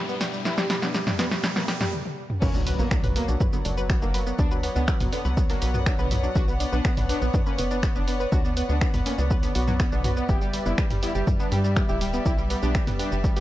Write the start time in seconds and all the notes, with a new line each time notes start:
Already playing: G2 B2 G3 B3 D4 E4, riser
0.09 G3 B3, shaker
0.21 G3 G4, snare, open hi-hat, shaker
0.33 G3, shaker
0.45 G3 B3 E4, snare, shaker
0.58 G3 G4, snare, shaker
0.70 G3, snare, open hi-hat, shaker
0.82 B3 D4, snare, shaker
0.94 G3 G4, snare, shaker
1.07 G3, snare, mid tom, shaker
1.19 G3 B3, snare, open hi-hat, shaker
1.31 G3 G4, snare, shaker
1.44 G3, snare, shaker
1.56 G3 A#3 B3, snare, shaker
1.68 G3 G4, snare, open hi-hat, shaker
1.81 G3, snare, mid tom, shaker
1.93 high tom
2.05 high tom
2.30 mid tom
2.42 B1 A#3 B3 C#4 B4 C#5 D5 F#5, kick, crash, impact, shaker
2.54 F#3 D4 D5, shaker
2.67 F#3 B4 B5, open hi-hat, shaker
2.79 B1 F#3 A#3 B3 B4, shaker
2.91 F#3 D4 D5, finger snap, kick, shaker
3.04 B1 F#3 B4 B5, mid tom, open hi-hat, shaker
3.16 F#3 A#3 B3 B4, open hi-hat, shaker
3.28 B1 F#3 D4 D5, shaker
3.40 F#3 B4 B5, kick, mid tom, shaker
3.53 D3 F#3 B3 B4, shaker
3.65 F#1 F#3 D4 D5, open hi-hat, shaker
3.77 F#3 B4 B5, shaker
3.90 F#3 B3 B4, finger snap, kick, shaker
4.02 F#1 F#3 A#3 D4 D5, shaker
4.14 F#3 B4 B5, open hi-hat, shaker
4.27 F#3 B3 B4, shaker
4.39 D2 B3 D4 D5, kick, shaker
4.51 F#3 B4 B5, shaker
4.63 F#3 B3 B4, open hi-hat, shaker
4.76 D2 D3 B3 D4 D5, shaker
4.88 F#3 B4 B5, finger snap, kick, shaker
5.00 C#2 F#3 B3 B4, mid tom, open hi-hat, shaker
5.13 D3 B3 D4 D5, open hi-hat, shaker
5.25 C#2 F#3 B4 B5, shaker
5.37 F#3 B3 B4, kick, shaker
5.50 F#3 A#3 D4 D5, open hi-hat, shaker
5.62 B1 F#3 B4 B5, open hi-hat, shaker
5.74 F#3 B3 B4, mid tom, shaker
5.86 F#3 D4 D5, finger snap, kick, shaker
5.99 B1 D3 B3 B4 B5, shaker
6.11 F#3 B3 B4, mid tom, open hi-hat, shaker
6.23 F#3 D4 D5, shaker
6.35 B1 D4 F#4 B4 B5, kick, shaker
6.48 B3 B4, shaker
6.60 B3 D4 D5, open hi-hat, shaker
6.72 B1 B3 D4 B4 B5, shaker
6.85 B3 B4, finger snap, kick, shaker
6.97 B1 B3 D4 D5, mid tom, open hi-hat, shaker
7.09 B3 D4 B4 B5, open hi-hat, shaker
7.22 B1 B3 B4, shaker
7.34 B3 D4 D5, kick, mid tom, shaker
7.46 A#3 C#4 B4 B5, shaker
7.58 F#1 B3 B4, open hi-hat, shaker
7.71 B3 D4 D5, shaker
7.83 B3 B4 B5, finger snap, kick, shaker
7.96 F#1 B3 D4 B4, shaker
8.08 B3 D4 D5, open hi-hat, shaker
8.20 B3 B4 B5, shaker
8.32 D2 B3 D4 F#4 B4, kick, shaker
8.45 B3 D4 D5, shaker
8.57 B3 B4 B5, open hi-hat, shaker
8.69 D2 B3 D4 B4, shaker
8.81 B3 D4 D5, finger snap, kick, shaker
8.94 C#2 B3 B4 B5, mid tom, open hi-hat, shaker
9.06 A#3 B3 C#4 B4, open hi-hat, shaker
9.18 C#2 B3 D4 D5, shaker
9.31 B3 B4 B5, kick, shaker
9.43 D3 B3 B4, open hi-hat, shaker
9.55 B1 B3 F#4 F#5, open hi-hat, shaker
9.68 F#3 B3 F#4, mid tom, shaker
9.80 B3 B4 B5, finger snap, kick, shaker
9.92 B1 D3 B3 D4 D5, shaker
10.04 B3 F#4 F#5, mid tom, open hi-hat, shaker
10.17 B3 B4, shaker
10.29 G1 G3 B3 E4 G4 B4 E5, kick, shaker
10.41 G3 G4 G5, shaker
10.53 G3 G4, open hi-hat, shaker
10.66 G1 G3 B3 E4 B4, shaker
10.78 G3 G4 G5, finger snap, kick, shaker
10.90 G1 G3 G4, mid tom, open hi-hat, shaker
11.03 G3 B3 E4 B4, open hi-hat, shaker
11.15 G1 G3 G4 G5, shaker
11.27 G3 G4, kick, mid tom, shaker
11.40 B3 D4 B4, shaker
11.52 G2 G3 G4 G5, open hi-hat, shaker
11.64 G3 G4, shaker
11.76 G3 B3 B4, finger snap, kick, shaker
11.89 D1 G3 E4 G4 G5, shaker
12.01 G3 G4, open hi-hat, shaker
12.13 G3 B3 B4, shaker
12.26 B1 G3 E4 G4 G5, kick, shaker
12.38 G3 G4, shaker
12.50 G3 B3 B4, open hi-hat, shaker
12.63 B1 B3 D4 G4 G5, shaker
12.75 G3 G4, finger snap, kick, shaker
12.87 G1 G3 B3 B4, mid tom, open hi-hat, shaker
12.99 B3 D4 G4 G5, open hi-hat, shaker
13.12 G1 G3 G4, shaker
13.24 G3 B3 B4, kick, shaker
13.36 G3 B3 G4 G5, open hi-hat, shaker